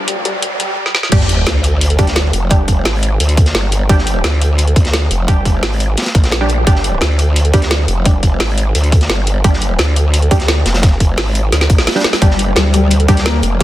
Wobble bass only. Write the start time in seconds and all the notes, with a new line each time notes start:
0.25 D2
1.12 G1
1.47 D2
1.99 D2
2.33 F1
2.85 G#1
3.20 D2
3.55 G1
3.89 G1
4.24 D2
4.76 D2
5.11 F1
5.63 G#1
6.15 A#1
6.67 G1
7.02 D2
7.54 D2
7.88 F1
8.40 G#1
8.75 D2
9.10 G1
9.44 G1
9.79 D2
10.31 D2
10.66 F1
11.18 G#1
11.52 D2
11.70 A#1
12.22 G1
12.56 D2
13.09 D2
13.43 F1